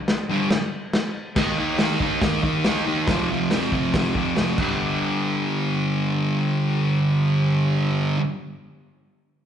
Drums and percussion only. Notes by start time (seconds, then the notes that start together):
0.08 snare, crash
0.50 snare, crash
0.93 snare, crash
1.36 kick, snare, crash
1.78 snare, open hi-hat
2.00 kick
2.21 kick, snare, open hi-hat
2.43 kick
2.64 snare, open hi-hat
3.07 kick, snare, open hi-hat
3.51 snare, open hi-hat
3.72 kick
3.94 kick, snare, open hi-hat
4.15 kick
4.36 snare, open hi-hat
4.58 kick, crash